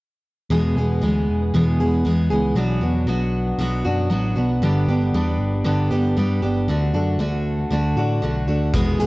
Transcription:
0.50 0.72 E1 medium
0.50 1.02 E2 medium
0.50 1.02 B2 medium
0.50 0.77 E3 medium
0.50 0.77 G#3 medium
0.50 0.77 B3 medium
0.50 0.75 G#4 medium
0.76 0.98 E1 medium
0.76 1.00 E3 soft
0.76 1.01 G#3 medium
0.76 1.03 B3 medium
0.76 1.02 G#4 medium
1.01 1.23 D2 medium
1.01 1.53 E3 medium
1.01 1.53 G#3 medium
1.01 1.55 B3 medium
1.01 1.54 G#4 medium
1.29 1.50 E1 medium
1.53 1.75 E1 medium
1.53 2.05 E2 medium
1.53 2.05 B2 medium
1.53 1.81 E3 medium
1.53 1.80 G#3 medium
1.53 1.80 B3 medium
1.53 1.79 G#4 medium
1.79 2.01 E1 medium
1.79 2.04 E3 soft
1.79 2.04 G#3 soft
1.79 2.06 B3 medium
1.79 2.05 G#4 medium
2.05 2.27 E2 medium
2.05 2.32 E3 medium
2.05 2.31 G#3 medium
2.05 2.31 B3 medium
2.05 2.29 G#4 medium
2.30 2.52 C#2 medium
2.30 2.56 E3 soft
2.30 2.55 G#3 medium
2.30 2.57 B3 medium
2.30 2.55 G#4 medium
2.55 2.77 B1 medium
2.55 3.07 B2 medium
2.55 3.06 F#3 medium
2.55 2.83 B3 medium
2.55 2.82 D4 medium
2.55 2.80 F#4 medium
2.81 3.04 E2 medium
2.81 3.07 B3 soft
2.81 3.08 D4 soft
2.81 3.08 F#4 medium
3.06 3.51 B1 medium
3.06 3.58 F#3 medium
3.06 3.59 B3 medium
3.06 3.60 D4 medium
3.06 3.60 F#4 medium
3.58 3.80 B1 medium
3.58 4.10 B2 medium
3.58 4.08 F#3 medium
3.58 3.86 B3 medium
3.58 3.85 D4 medium
3.58 3.83 F#4 medium
3.84 4.07 F#2 medium
3.84 4.10 B3 soft
3.84 4.10 D4 medium
3.84 4.11 F#4 medium
4.10 4.33 A1 medium
4.10 4.60 F#3 medium
4.10 4.37 B3 medium
4.10 4.36 D4 medium
4.10 4.34 F#4 medium
4.35 4.58 B1 medium
4.35 4.61 B3 medium
4.35 4.63 D4 medium
4.35 4.60 F#4 medium
4.62 4.84 G1 medium
4.62 5.13 G2 medium
4.62 5.14 D3 medium
4.62 4.89 G3 medium
4.62 4.89 B3 medium
4.62 4.89 D4 medium
4.62 4.87 G4 medium
4.88 5.10 G1 medium
4.88 5.13 G3 soft
4.88 5.13 B3 medium
4.88 5.15 D4 medium
4.88 5.15 G4 medium
5.13 5.35 E2 medium
5.13 5.64 G3 medium
5.13 5.64 B3 medium
5.13 5.65 D4 medium
5.13 5.65 G4 medium
5.38 5.61 G1 medium
5.64 5.87 G1 medium
5.64 6.16 G2 medium
5.64 6.16 D3 medium
5.64 5.92 G3 medium
5.64 5.91 B3 medium
5.64 5.91 D4 medium
5.64 5.89 G4 medium
5.91 6.13 G1 medium
5.91 6.16 G3 soft
5.91 6.16 B3 medium
5.91 6.17 D4 medium
5.91 6.18 G4 medium
6.17 6.39 G2 medium
6.17 6.43 G3 medium
6.17 6.43 B3 medium
6.17 6.42 D4 medium
6.17 6.41 G4 medium
6.42 6.64 G1 medium
6.42 6.68 G3 medium
6.42 6.67 B3 soft
6.42 6.67 D4 medium
6.42 6.67 G4 medium
6.68 6.90 D2 medium
6.68 7.18 D3 medium
6.68 6.95 A3 medium
6.68 6.93 D4 medium
6.68 6.93 F#4 medium
6.93 7.16 F#2 medium
6.93 7.19 A3 soft
6.93 7.19 D4 medium
6.93 7.20 F#4 medium
7.19 7.63 D2 medium
7.19 7.69 D3 medium
7.19 7.70 A3 medium
7.19 7.72 D4 medium
7.19 7.72 F#4 medium
7.70 7.93 D2 medium
7.70 8.21 D3 medium
7.70 7.98 A3 medium
7.70 7.97 D4 medium
7.70 7.95 F#4 medium
7.96 8.18 A2 medium
7.96 8.22 A3 soft
7.96 8.22 D4 medium
7.96 8.23 F#4 medium
8.22 8.44 B1 medium
8.22 8.72 D3 medium
8.22 8.48 A3 medium
8.22 8.48 D4 medium
8.22 8.46 F#4 medium
8.47 8.69 D2 medium
8.47 8.73 A3 soft
8.47 8.73 D4 medium
8.47 8.72 F#4 medium
8.74 8.96 E1 medium
8.74 9.06 E2 medium
8.74 9.06 B2 medium
8.74 9.00 E3 medium
8.74 9.00 G#3 medium
8.74 9.00 B3 medium
8.74 8.98 G#4 medium
8.74 kick loud
8.74 closed hi-hat medium
8.98 9.06 E1 medium
8.98 9.06 E3 soft
8.98 9.06 G#3 medium
8.98 9.06 B3 medium
8.98 9.06 G#4 medium
8.98 closed hi-hat soft

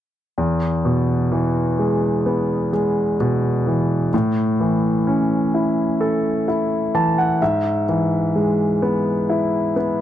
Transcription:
0.38 4.09 E2 soft
0.85 2.68 B2 soft
1.32 3.15 E3 soft
1.79 2.72 G#3 soft
2.26 4.09 B3 soft
2.73 4.09 G#3 soft
3.20 4.11 B2 soft
3.67 4.12 E3 soft
4.14 7.37 A2 soft
4.60 6.43 E3 soft
5.07 6.90 C#4 soft
5.54 6.47 E4 soft
6.01 7.37 A4 soft
6.48 7.39 E4 soft
6.95 7.40 E3 soft
6.95 7.16 A5 medium
7.18 7.40 F#5 soft
7.42 10.01 G#2 soft
7.42 7.85 E5 medium
7.89 9.72 E3 soft
8.36 10.01 G#3 soft
8.82 9.75 B3 soft
9.29 10.01 E4 soft
9.76 10.01 B3 soft

